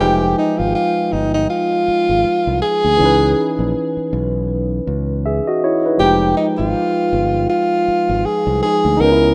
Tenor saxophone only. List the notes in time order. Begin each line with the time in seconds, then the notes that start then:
0.00 G4
0.38 D#4
0.58 F4
0.75 F4
1.12 D#4
1.34 D#4
1.50 F4
2.62 G#4
6.00 G4
6.37 D#4
6.58 F4
7.49 F4
8.26 G#4
8.62 G#4
9.00 A#4